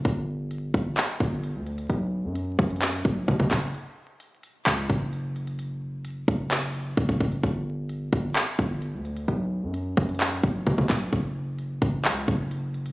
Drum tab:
HH |x-------x---x---x---x---x---x-x-|x-------x---xxxxx---x---x---x---|x-------x---x---x---x---x---x-x-|x-------x---x---x---x---x---x-x-|
CP |----------------x---------------|----------------x-----------x---|----------------x---------------|----------------x---------------|
BD |o-----------o-------o-----------|------------o-------o---o-o-o---|--------------------o-----------|------------o-----------o-o-o---|

HH |x-------x---x---x---x---x---x-x-|x-------x---xxxxx---x---x---x---|x-------x---x---x---x---x---x-x-|
CP |----------------x---------------|----------------x-----------x---|----------------x---------------|
BD |o-----------o-------o-----------|------------o-------o---o-o-o---|o-----------o-------o-----------|